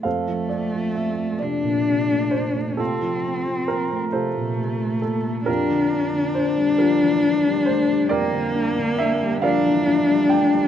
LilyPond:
<<
  \new Staff \with { instrumentName = "Cello" } { \time 12/8 \key f \major \tempo 4. = 45 a4. d'4. c'4. a4. | d'2. bes4. d'4. | }
  \new Staff \with { instrumentName = "Grand piano" } { \time 12/8 \key f \major <a' c'' f''>8 d''8 e''8 d''4 c''8 <c' f' a'>4 bes'8 <f' a' c''>4 a'8 | <f' g' bes'>4 c''8 <f' g' bes'>4 c''8 <g' bes' d''>4 e''8 <bes' d'' f''>4 g''8 | }
  \new Staff \with { instrumentName = "Grand piano" } { \clef bass \time 12/8 \key f \major f,16 f16 c'16 f16 c'16 a16 c16 bes,16 c16 a16 bes16 a16 c16 f16 c'16 f16 c'16 a16 c16 bes,16 c16 a16 bes16 a16 | f,16 d16 d'16 d16 d'16 g16 f16 e16 f16 g16 a16 g16 f,16 d16 d'16 d16 d'16 g16 f16 e16 f16 g16 a16 g16 | }
>>